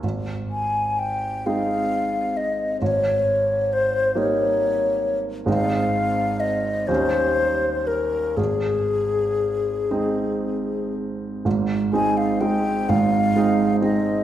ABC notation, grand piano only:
X:1
M:6/8
L:1/8
Q:3/8=42
K:Ab
V:1 name="Grand piano"
A,,,3 [A,CE]3 | A,,,3 [G,B,E]3 | [A,,,A,CE]3 [E,,G,DE]3 | A,,,3 [A,CE]3 |
[A,,,A,,] [A,CE] [A,CE] [A,,,A,,] [A,CE] [A,CE] |]